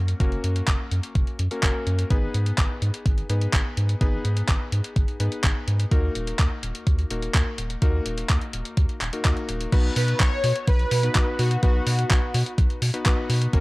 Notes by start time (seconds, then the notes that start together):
Already playing: F#2 A#3 C#4 F#4 A#4
0.08 closed hi-hat
0.20 F#1 A#3 C#4 F#4 A#4, kick, closed hi-hat
0.32 closed hi-hat
0.44 F#2, closed hi-hat
0.56 closed hi-hat
0.68 F#1, kick, clap, closed hi-hat
0.91 F#2, closed hi-hat
1.03 closed hi-hat
1.15 F#1, kick, closed hi-hat
1.27 closed hi-hat
1.39 F#2, closed hi-hat
1.51 A#3 C#4 F#4 A#4, closed hi-hat
1.63 F#1 A#3 C#4 F#4 A#4, kick, clap, closed hi-hat
1.87 F#2, closed hi-hat
1.99 closed hi-hat
2.10 G#1 B3 D#4 G#4 B4, kick, closed hi-hat
2.34 G#2, closed hi-hat
2.46 closed hi-hat
2.58 G#1, kick, clap, closed hi-hat
2.82 G#2, closed hi-hat
2.94 closed hi-hat
3.06 G#1, kick, closed hi-hat
3.18 closed hi-hat
3.29 G#2 B3 D#4 G#4 B4, closed hi-hat
3.42 closed hi-hat
3.53 G#1, kick, clap, closed hi-hat
3.77 G#2, closed hi-hat
3.89 closed hi-hat
4.01 G#1 B3 D#4 G#4 B4, kick, closed hi-hat
4.25 G#2, closed hi-hat
4.37 closed hi-hat
4.49 G#1, kick, clap, closed hi-hat
4.72 G#2, closed hi-hat
4.84 closed hi-hat
4.96 G#1, kick, closed hi-hat
5.08 closed hi-hat
5.20 G#2 B3 D#4 G#4 B4, closed hi-hat
5.32 closed hi-hat
5.44 G#1, kick, clap, closed hi-hat
5.68 G#2, closed hi-hat
5.80 closed hi-hat
5.91 D#2 A#3 D#4 F#4 A#4, kick, closed hi-hat
6.15 D#1, closed hi-hat
6.27 closed hi-hat
6.39 D#2, kick, clap, closed hi-hat
6.63 D#1, closed hi-hat
6.75 closed hi-hat
6.87 D#2, kick, closed hi-hat
6.99 closed hi-hat
7.10 D#1 A#3 D#4 F#4 A#4, closed hi-hat
7.22 closed hi-hat
7.34 D#2, kick, clap, closed hi-hat
7.58 D#1, closed hi-hat
7.70 closed hi-hat
7.82 D#2 A#3 D#4 F#4 A#4, kick, closed hi-hat
8.06 D#1, closed hi-hat
8.18 closed hi-hat
8.29 D#2, kick, clap, closed hi-hat
8.41 closed hi-hat
8.53 D#1, closed hi-hat
8.65 closed hi-hat
8.77 D#2, kick, closed hi-hat
8.89 closed hi-hat
9.01 D#1, clap, closed hi-hat
9.13 A#3 D#4 F#4 A#4, closed hi-hat
9.25 D#2 A#3 D#4 F#4 A#4, kick, clap, closed hi-hat
9.37 closed hi-hat
9.49 D#1, closed hi-hat
9.61 closed hi-hat
9.72 B1 B3 D#4 F#4 B4, kick, closed hi-hat, crash
9.96 B2 B4, open hi-hat
10.08 closed hi-hat
10.20 B1 C#5, kick, clap, closed hi-hat
10.44 B2, open hi-hat
10.56 closed hi-hat
10.68 B1 B4, kick, closed hi-hat
10.79 closed hi-hat
10.91 B2, open hi-hat
11.03 B3 D#4 F#4 B4, closed hi-hat
11.15 B1 B3 D#4 F#4 B4, kick, clap, closed hi-hat
11.39 B2 F#4, open hi-hat
11.51 closed hi-hat
11.63 B1 B3 D#4 F#4 B4, kick, closed hi-hat
11.87 B2, open hi-hat
11.99 closed hi-hat
12.10 B1, kick, clap, closed hi-hat
12.34 B2, open hi-hat
12.46 closed hi-hat
12.58 B1, kick, closed hi-hat
12.70 closed hi-hat
12.82 B2, open hi-hat
12.94 B3 D#4 F#4 B4, closed hi-hat
13.06 B1 B3 D#4 F#4 B4, kick, clap, closed hi-hat
13.29 B2, open hi-hat
13.42 closed hi-hat
13.53 F#1 A#3 C#4 F#4 A#4, kick, closed hi-hat